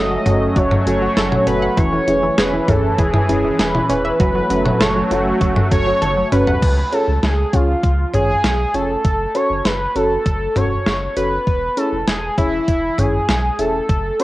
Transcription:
Already playing: F#1 F#3 A3 C#4 D#5
0.11 F#3
0.26 F#1 F#3 C#4 F#4 A4 C#5, closed hi-hat, mid tom
0.49 D#5
0.56 F#1 F#3 C#5, kick, closed hi-hat
0.71 F#3, mid tom
0.86 F#1 F#3 C#4 F#4 A4 C#5, closed hi-hat
1.02 F#3
1.17 F#1 A4, snare, closed hi-hat
1.32 F#3, mid tom
1.47 F#1 C#4 F#4 A4 B4 C#5, closed hi-hat
1.62 F#5
1.77 E1 E3 C#5, kick, closed hi-hat
1.93 E3
2.07 E1 E3 C#4 E4 G#4 C#5, closed hi-hat
2.23 E3
2.38 E1 G#4 B4, snare, closed hi-hat
2.53 E3
2.68 E1 E3 C#4 E4 G#4 A4 C#5, kick, closed hi-hat, mid tom
2.98 E1 E3 G#4, kick, closed hi-hat
3.14 E3, mid tom
3.29 E1 E3 C#4 E4 G#4 B4, closed hi-hat
3.44 E3
3.59 E1 G#4 B4, snare, closed hi-hat
3.75 E3, mid tom
3.89 E1 C#4 E4 G#4 B4 C#5, closed hi-hat
4.05 E5
4.20 F#1 F#3 A3, kick, closed hi-hat
4.35 F#3
4.50 F#1 F#3 C#4 F#4 A4 C#5, closed hi-hat
4.65 F#3, mid tom
4.80 F#1 A4 C#5, snare, closed hi-hat
4.96 F#3
5.11 F#1 F#3 C#4 F#4 A4 C#5, closed hi-hat
5.41 F#1 F#3, kick, closed hi-hat
5.56 F#3, mid tom
5.71 F#1 F#3 C#4 F#4 A4 C#5, kick, closed hi-hat
5.87 F#3
6.02 F#1 A4, closed hi-hat, high tom
6.17 F#3
6.32 F#1 C#4 F#4 A4 B4 C#5, closed hi-hat, mid tom
6.47 F#5, floor tom
6.62 C#2, kick, closed hi-hat, crash
6.92 C#4 F4 G#4 A4 C#5, closed hi-hat
7.08 C#2
7.23 C#2 G#4, snare, closed hi-hat
7.53 C#2 C#4 F4 G#4 C#5, kick, closed hi-hat
7.83 C#2, kick, closed hi-hat
8.14 G#1 C#4 F4 G#4 C#5, closed hi-hat, mid tom
8.44 B1, snare, closed hi-hat
8.74 F1 C#4 F4 G#4 A4 C#5, closed hi-hat
9.05 F#1, kick, closed hi-hat
9.35 C#4 F#4 A4 C#5, closed hi-hat
9.50 F#1
9.65 F#1 B4, snare, closed hi-hat
9.95 F#1 C#4 F#4 A4 C#5, closed hi-hat
10.26 F#1, kick, closed hi-hat
10.56 E1 C#4 F#4 A4 C#5, closed hi-hat, mid tom
10.86 F#1, snare, closed hi-hat
11.17 F#1 C#4 F#4 A4 B4 C#5, closed hi-hat
11.47 E1, kick, closed hi-hat
11.77 C#4 E4 G#4 A4 C#5, closed hi-hat
11.93 E1
12.08 E1 G#4, snare, closed hi-hat
12.38 E1 C#4 E4 G#4 C#5, kick, closed hi-hat
12.68 E1, kick, closed hi-hat
12.98 G#1 C#4 E4 G#4 C#5, closed hi-hat, mid tom
13.29 B1, snare, closed hi-hat
13.59 E1 C#4 E4 G#4 A4 E5, closed hi-hat
13.89 F#1, kick, closed hi-hat
14.20 C#4 F#4 A4 C#5, closed hi-hat

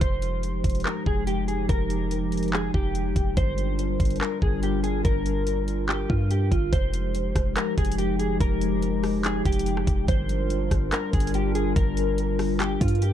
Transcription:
0.01 F1 F3 G#3 D#4 G4 C5, kick, closed hi-hat
0.22 closed hi-hat
0.43 closed hi-hat
0.64 F1, kick, closed hi-hat
0.70 closed hi-hat
0.75 closed hi-hat
0.80 closed hi-hat
0.85 A#4, clap
1.06 F1 G#4, kick
1.27 G4, closed hi-hat
1.48 G#4, closed hi-hat
1.69 F1 A#4, kick, closed hi-hat
1.90 closed hi-hat
2.11 closed hi-hat
2.32 closed hi-hat
2.37 closed hi-hat
2.43 closed hi-hat
2.48 closed hi-hat
2.53 G#4, clap
2.74 F1 G4, kick
2.95 closed hi-hat
3.16 F1, kick, closed hi-hat
3.37 G1 G3 D4 F4 A#4 C5, kick, closed hi-hat
3.58 closed hi-hat
3.79 closed hi-hat
4.00 G1, kick, closed hi-hat
4.05 closed hi-hat
4.10 closed hi-hat
4.16 closed hi-hat
4.21 A#4, clap
4.42 G1 G#4, kick
4.63 G4, closed hi-hat
4.84 G#4, closed hi-hat
5.05 G1 A#4, kick, closed hi-hat
5.26 closed hi-hat
5.47 closed hi-hat
5.68 closed hi-hat
5.89 G4, clap
6.09 G2 F4, kick
6.31 G4, closed hi-hat
6.51 G1 F4, kick, closed hi-hat
6.73 F1 F3 G#3 D#4 G4 C5, kick, closed hi-hat
6.94 closed hi-hat
7.15 closed hi-hat
7.36 F1, kick, cross-stick, closed hi-hat
7.56 A#4, clap, closed hi-hat
7.78 F1 G#4, kick, closed hi-hat
7.85 closed hi-hat
7.92 closed hi-hat
7.98 G4, closed hi-hat
8.19 G#4, closed hi-hat
8.41 F1 A#4, kick, closed hi-hat
8.61 closed hi-hat
8.82 closed hi-hat
9.03 cross-stick, open hi-hat
9.24 G#4, clap, closed hi-hat
9.45 F1 G4, kick, closed hi-hat
9.52 closed hi-hat
9.59 closed hi-hat
9.66 closed hi-hat
9.77 cross-stick
9.87 F1, kick, closed hi-hat
10.08 G1 G3 D4 F4 A#4 C5, kick, closed hi-hat
10.29 closed hi-hat
10.50 closed hi-hat
10.71 G1, kick, cross-stick, closed hi-hat
10.92 A#4, clap, closed hi-hat
11.13 G1 G#4, kick, closed hi-hat
11.20 closed hi-hat
11.27 closed hi-hat
11.34 G4, closed hi-hat
11.55 G#4, closed hi-hat
11.76 G1 A#4, kick, closed hi-hat
11.97 closed hi-hat
12.18 closed hi-hat
12.39 cross-stick, open hi-hat
12.60 G4, clap, closed hi-hat
12.81 G2 F4, kick, closed hi-hat
12.88 closed hi-hat
12.95 closed hi-hat
13.02 G4, closed hi-hat

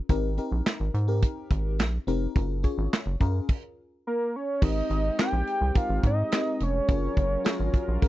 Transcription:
0.09 G#1 C4 D#4 G4 A#4, kick, closed hi-hat
0.37 C4 D#4 G4 A#4, closed hi-hat
0.52 A#1
0.66 snare, clap, closed hi-hat
0.80 G#1
0.94 G#2, closed hi-hat
1.07 C4 D#4 G4 A#4
1.22 kick, closed hi-hat
1.51 G#1, kick, closed hi-hat
1.79 A#1, snare, clap, closed hi-hat
2.07 F1 C4 D#4 G4 A#4, closed hi-hat
2.35 F#1 C#4 F4 G#4 A#4, kick, closed hi-hat
2.63 C#4 F4 G#4 C#5, kick, closed hi-hat
2.78 G#1
2.93 snare, clap, closed hi-hat
3.06 F#1
3.20 F#2 C#4 F4 G#4 A#4, kick, closed hi-hat
3.49 kick, crash
4.07 A#4
4.36 C#5
4.62 G#1 G#3 C4 D#4 G4 A#4 D#5, kick, crash
4.90 G#1, closed hi-hat
5.18 C4 D#4 G4 A#4 G5, snare, clap, closed hi-hat
5.33 A#1
5.47 closed hi-hat
5.61 C2
5.74 C4 D#4 G4 A#4 F5, kick, closed hi-hat
5.89 G#1
6.03 G#2 D#5, kick, closed hi-hat
6.32 C4 D#4 G4 A#4, snare, clap, closed hi-hat
6.60 F1 C#5, closed hi-hat
6.88 F#1 F#3 C#4 F4 G#4 A#4, kick, closed hi-hat
7.17 F#1, kick, closed hi-hat
7.44 C#4 F4 G#4 C#5, snare, clap, closed hi-hat
7.60 G#1
7.74 kick, closed hi-hat
7.88 A#1
8.02 C#4 F4 G#4 A#4, kick, closed hi-hat

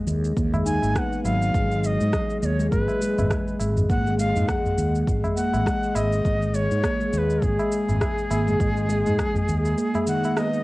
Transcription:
0.07 D#2 G#3, tabla tin, shaker
0.24 shaker
0.37 D#2 A#3, kick, shaker
0.53 G#3, tabla na, tabla ge, shaker
0.65 D#4 G#5, shaker
0.82 G#1, tabla na, shaker
0.94 B3 G#5, kick, cross-stick, shaker
0.98 F#5
1.12 tabla tin, shaker
1.24 G#1 F#3 F5, tabla na, shaker
1.42 shaker
1.54 G#1 G#3, kick, shaker
1.71 shaker
1.81 F5, tabla tin, shaker
1.86 D#5
2.01 G#2, shaker
2.13 G#3, kick, cross-stick, shaker
2.30 shaker
2.41 D#2 A#3 D#5, tabla tin, shaker
2.45 C#5
2.59 G#3, shaker
2.70 G#1 G#3 A#4, kick, shaker
2.81 B4
2.88 tabla na, shaker
3.01 G#3, shaker
3.18 G#1, tabla na, tabla ge, shaker
3.30 kick, cross-stick, tabla na, shaker
3.48 shaker
3.60 G#1 G#3, tabla na, shaker
3.77 tabla ge, shaker
3.90 G#1 A#3 F#5, kick, shaker
4.07 G#3, shaker
4.19 G#3 F5, tabla tin, shaker
4.36 G#2, tabla ge, shaker
4.48 G#3 F#5, kick, cross-stick, shaker
4.65 tabla ge, shaker
4.78 D#2, tabla tin, shaker
4.95 shaker
5.07 G#1 G#3, kick, shaker
5.24 tabla na, tabla ge, shaker
5.36 A#3 F#5, shaker
5.53 G#1 G#3, tabla na, shaker
5.66 G#3, kick, cross-stick, shaker
5.83 tabla tin, shaker
5.95 G#1 G#3 D#5, tabla na, shaker
6.12 shaker
6.25 G#1, kick, shaker
6.42 shaker
6.54 G#3 C#5, tabla tin, shaker
6.71 G#2, shaker
6.84 A#3, kick, cross-stick, shaker
7.00 G#3, shaker
7.13 D#2 G#3 C#5, tabla tin, shaker
7.18 B4
7.30 shaker
7.42 G#1 G#3 G#4, kick, shaker
7.59 tabla na, shaker
7.72 shaker
7.89 G#1, tabla na, tabla ge, shaker
8.01 G#3, kick, cross-stick, tabla na, shaker
8.18 shaker
8.30 G#1 A#3, tabla na, shaker
8.47 G#3, tabla ge, shaker
8.60 G#1 G#3, kick, shaker
8.77 shaker
8.89 G#3, tabla tin, shaker
9.06 G#2, tabla ge, shaker
9.19 kick, cross-stick, shaker
9.35 tabla ge, shaker
9.48 D#2 G#3, tabla tin, shaker
9.65 tabla na, shaker
9.78 A#3, shaker
9.94 G#3, tabla na, tabla ge, shaker
10.07 D#3 F#5, shaker
10.24 A#3, tabla na, tabla tin, shaker
10.37 B3 D#5, cross-stick, shaker
10.54 tabla tin, shaker

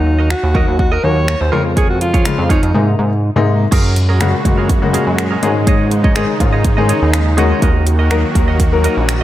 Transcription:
Already playing: D#2 D#3 F#3 A#3 D#4 F#4
0.06 muted clean electric guitar stroke
0.19 F#4 A#4 D#5
0.30 F#4, finger snap, muted clean electric guitar stroke
0.43 D#2, muted clean electric guitar stroke
0.54 D#3 F#3 A#3 F#4 A#4 D#5, kick
0.68 D#2, muted clean electric guitar stroke
0.79 F#4, muted clean electric guitar stroke, kick
0.92 F#4 A#4 D#5
1.03 D#2 D#3 F#3 A#3 F#4 C#5, muted clean electric guitar stroke
1.16 muted clean electric guitar stroke
1.28 finger snap
1.41 D#2 C5, muted clean electric guitar stroke
1.52 F2 C#3 F3 G#3 F4 G#4 A#4 C#5
1.65 muted clean electric guitar stroke
1.76 F4 G#4 C#5, kick, closed hi-hat
1.89 F#4, muted clean electric guitar stroke
2.01 F4, muted clean electric guitar stroke, closed hi-hat
2.14 F4 G#4 C#5, kick, closed hi-hat
2.25 C#3 F3 G#3 F4, finger snap, muted clean electric guitar stroke, closed hi-hat
2.38 F2, muted clean electric guitar stroke
2.49 D#4 F4 G#4 C#5, kick, closed hi-hat
2.63 F2, muted clean electric guitar stroke, closed hi-hat
2.74 G#2 C3 G#3 A#3 D#4
2.99 G#2
3.36 G#2 C3 G#3 A#3 D#4
3.71 F#2 A#2 G#3 C#4 F#4 G#4 A#4, kick, closed hi-hat, crash
3.96 muted clean electric guitar stroke, closed hi-hat
4.09 C#4 G#4 A#4
4.20 C#3 G#3 A#3 C#4 F#4 G#4 A#4, finger snap, closed hi-hat
4.33 muted clean electric guitar stroke
4.45 F#2 C#3 G#3 A#3 F#4, muted clean electric guitar stroke, kick, closed hi-hat
4.57 C#4 G#4 A#4
4.69 muted clean electric guitar stroke, kick, closed hi-hat
4.82 C#3 G#3 A#3 F#4, muted clean electric guitar stroke
4.93 C#4 G#4 A#4, closed hi-hat
5.06 F#2, muted clean electric guitar stroke
5.18 finger snap, muted clean electric guitar stroke, closed hi-hat
5.31 C#4 G#4 A#4
5.42 G#2 C#3 D#3 G#3 C#4 D#4 G#4 C#5 D#5, closed hi-hat
5.55 muted clean electric guitar stroke
5.67 G#4 C#5 D#5, kick, closed hi-hat
5.91 muted clean electric guitar stroke, closed hi-hat
6.04 G#4 C#5 D#5, kick
6.15 D#3 G#3 C#4 G#4 C#5 D#5, finger snap, closed hi-hat
6.28 muted clean electric guitar stroke
6.40 G#2 D#3 G#3 C#4 F4, muted clean electric guitar stroke, kick, closed hi-hat
6.53 G#4 C#5 D#5
6.64 muted clean electric guitar stroke, kick, closed hi-hat
6.77 D#3 G#3 C#4 G#4 C#5 D#5
6.88 G#4 C#5 D#5, closed hi-hat
7.01 D#2, muted clean electric guitar stroke
7.13 finger snap, muted clean electric guitar stroke, closed hi-hat
7.26 muted clean electric guitar stroke
7.37 D#3 G#3 C#4 F#4 G#4 C#5 D#5, closed hi-hat
7.50 G#4 C#5 D#5
7.62 D#2 D#3 A#3 F#4 A#4 D#5, kick, closed hi-hat
7.86 muted clean electric guitar stroke, closed hi-hat
7.99 F#4 A#4 D#5
8.10 F#3 A#3 D#4 F#4 A#4 D#5, finger snap, closed hi-hat
8.24 muted clean electric guitar stroke
8.35 D#2 F#3 A#3 D#4 A#4, muted clean electric guitar stroke, kick, closed hi-hat
8.48 F#4 A#4 D#5
8.60 kick, closed hi-hat
8.72 F#3 A#3 D#4 A#4, muted clean electric guitar stroke
8.84 F#4 A#4 D#5, closed hi-hat
8.97 A#1, muted clean electric guitar stroke
9.08 finger snap, muted clean electric guitar stroke, closed hi-hat

